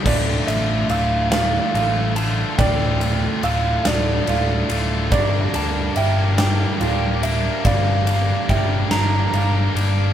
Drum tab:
CC |x-----|------|------|------|
RD |-xxxxx|xxxxxx|xxxxxx|xxxxxx|
SD |---o--|---o--|---o--|---o--|
BD |o-----|o-----|o-----|o-o---|